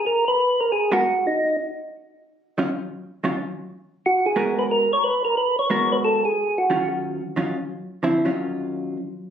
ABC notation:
X:1
M:4/4
L:1/8
Q:"Swing" 1/4=180
K:Ebm
V:1 name="Tonewheel organ"
B c2 B A G2 E- | E z6 z | z8 | G A2 c B d c B |
c d2 c =A _A2 G- | G z6 z | z8 |]
V:2 name="Hollow-body jazz guitar"
z4 z [A,CGB] z2 | z6 z [E,G,DF] | z3 [E,G,DF] z4 | z2 [A,CGB]3 z3 |
z2 [A,CGB]3 z3 | [E,G,DF]3 z [E,G,DF] z3 | [=D,F,=C_F] [E,G,_D=F]4 z3 |]